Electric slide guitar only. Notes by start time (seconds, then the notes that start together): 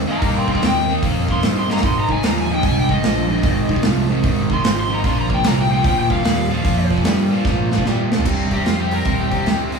0.10 F5 A#5
0.23 F5 A#5
0.38 G5 C6
0.52 G5 C6
0.66 G5
1.32 C6
1.59 C6
1.72 A#5
1.86 C6
2.00 A#5
2.12 G#5
2.27 A#5
2.41 G#5
2.54 G5
2.66 G#5
2.80 G5
2.91 D#5
4.54 C6
4.80 C6
4.95 A#5
5.07 C6
5.20 A#5
5.34 G5
5.47 A#5
5.61 G5
5.72 G5
5.87 G5
6.00 G5
6.12 F5
8.53 G4
8.65 F4
8.79 G4
8.93 A#4
9.21 G4